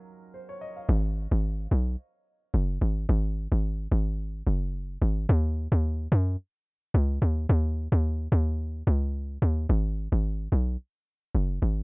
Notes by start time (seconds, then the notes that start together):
Already playing: F#3 C#4 D#4 F4 A#4
0.34 C5
0.49 C#5
0.61 D#5
0.77 F5
0.89 G#1
1.31 G#1
1.71 B1
2.54 F#1
2.81 G#1
3.09 G#1
3.52 G#1
3.92 G#1
4.47 F#1
5.02 G#1
5.29 D#2
5.72 D#2
6.12 F#2
6.94 C#2
7.22 D#2
7.49 D#2
7.92 D#2
8.32 D#2
8.87 C#2
9.42 D#2
9.69 G#1
10.12 G#1
10.52 B1
11.35 F#1
11.62 G#1